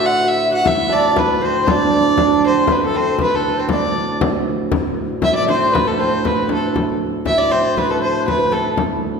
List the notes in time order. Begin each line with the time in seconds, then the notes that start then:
Already playing: D2 A2
0.00 F#4
0.06 F#5
0.25 E5
0.51 F#4 F#5
0.64 D2 A2 E4 E5, frame drum
0.89 D4 D5
1.16 B3 B4, frame drum
1.42 C4 C5
1.66 D4 D5, frame drum
2.18 D4, frame drum
2.44 C4 C5
2.67 B3 B4, frame drum
2.72 B4
2.81 A3 A4
2.85 A4
2.94 C4 C5
3.19 B3 B4, frame drum
3.23 B4
3.34 A3 A4
3.57 C4 C5
3.69 D5, frame drum
3.73 D4
4.21 frame drum
4.72 D2 A2, frame drum
5.22 E4 E5, frame drum
5.35 D4 D5
5.47 C4 C5, frame drum
5.71 B3 B4
5.75 frame drum
5.87 A3 A4
5.98 C4 C5
6.24 B3 B4, frame drum
6.49 A3, frame drum
6.54 A4
6.76 frame drum
7.25 E4 E5, frame drum
7.38 D5
7.51 C4 C5, frame drum
7.77 B3 B4, frame drum
7.90 A3 A4
8.02 C5, frame drum
8.26 B3 B4, frame drum
8.51 A3 A4, frame drum
8.77 D2 A2, frame drum